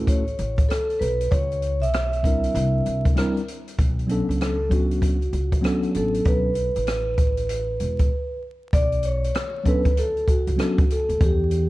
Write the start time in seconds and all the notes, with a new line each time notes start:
Already playing: A1 A3 C#4 E4 F#4 A4
0.07 C#5, kick, closed hi-hat
0.27 closed hi-hat
0.38 A1, closed hi-hat
0.58 kick, closed hi-hat
0.69 A4, cross-stick, closed hi-hat
0.90 closed hi-hat
0.99 B1 B4, closed hi-hat
1.21 closed hi-hat
1.31 C#2 C#5, kick, closed hi-hat
1.52 closed hi-hat
1.62 closed hi-hat
1.82 B1 E5, closed hi-hat
1.94 cross-stick, closed hi-hat
2.13 closed hi-hat
2.23 G3 C4 D4 E4 A#4, kick, closed hi-hat
2.43 closed hi-hat
2.54 C2, closed hi-hat
2.86 C2, closed hi-hat
3.05 kick, closed hi-hat
3.15 G3 C4 D4 E4 A#4, cross-stick, closed hi-hat
3.37 closed hi-hat
3.48 closed hi-hat
3.68 closed hi-hat
3.78 B1, kick, closed hi-hat
3.99 closed hi-hat
4.07 F#3 B3 C#4 D4, closed hi-hat
4.12 A4
4.29 C#2, closed hi-hat
4.41 A4, cross-stick, closed hi-hat
4.69 F#3 B3 C#4 D4 F#4, kick, closed hi-hat
4.91 closed hi-hat
5.02 kick, closed hi-hat
5.22 closed hi-hat
5.33 C#2, closed hi-hat
5.52 kick, closed hi-hat
5.61 F#3 B3 C#4 D4, cross-stick, closed hi-hat
5.65 A4
5.83 closed hi-hat
5.94 A1 A4, closed hi-hat
6.14 closed hi-hat
6.25 B1 B4, kick, closed hi-hat
6.55 closed hi-hat
6.76 A1, closed hi-hat
6.87 cross-stick, closed hi-hat
7.18 kick, closed hi-hat
7.37 closed hi-hat
7.49 closed hi-hat
7.80 E1, closed hi-hat
7.99 kick, closed hi-hat
8.73 B1 D5, kick, closed hi-hat
8.92 closed hi-hat
9.03 C#5, closed hi-hat
9.24 closed hi-hat
9.35 cross-stick, closed hi-hat
9.64 F#3 B3 C#4 D4 B4, kick, closed hi-hat
9.68 A4
9.85 D2, kick, closed hi-hat
9.97 A4, closed hi-hat
10.17 closed hi-hat
10.28 F#4, kick, closed hi-hat
10.47 C#2, closed hi-hat
10.57 F#3 B3 C#4 D4, cross-stick, closed hi-hat
10.61 A4
10.78 kick, closed hi-hat
10.90 A4, closed hi-hat
11.09 D2, closed hi-hat
11.21 E2 G4, kick, closed hi-hat
11.51 closed hi-hat